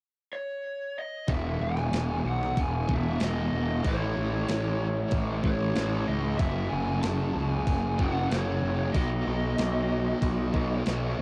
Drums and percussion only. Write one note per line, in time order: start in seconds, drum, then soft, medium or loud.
1.28 kick loud
1.28 open hi-hat medium
1.77 snare soft
1.93 snare loud
1.93 open hi-hat medium
2.43 snare soft
2.57 kick loud
2.57 open hi-hat medium
2.89 kick medium
3.20 snare loud
3.20 open hi-hat medium
3.85 kick loud
3.85 open hi-hat medium
4.48 snare loud
4.48 open hi-hat soft
5.11 kick loud
5.11 open hi-hat soft
5.44 kick medium
5.75 snare loud
5.75 open hi-hat soft
6.39 kick loud
6.39 open hi-hat medium
7.03 snare loud
7.03 open hi-hat soft
7.67 kick loud
7.67 open hi-hat medium
7.99 kick medium
8.31 snare medium
8.31 open hi-hat medium
8.94 kick loud
8.94 open hi-hat medium
9.58 snare loud
9.58 open hi-hat medium
10.22 kick medium
10.22 open hi-hat medium
10.54 kick medium
10.86 snare loud
10.86 open hi-hat soft